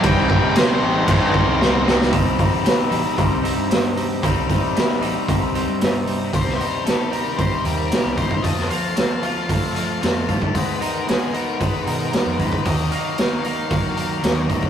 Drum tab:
CC |x---x---x-------|----------------|----------------|----------------|
HH |----------------|o-o-o-o-o-o-o-o-|o-o-o-o-o-o-o-o-|o-o-o-o-o-o-o-o-|
SD |----o-------o-oo|----o-------o---|----oo------o---|-o--o-------o---|
BD |o-o-----o-o-----|o-o-----o-------|o-o-----o-------|o-------o-----oo|

CC |----------------|----------------|----------------|
HH |o-o-o-o-o-o-o-o-|o-o-o-o-o-o-o-o-|o-o-o-o-o-o-o-o-|
SD |-o--o-------o---|----o-------o---|----o-------o---|
BD |o-------o-----oo|o-------o-----oo|o-------o-----oo|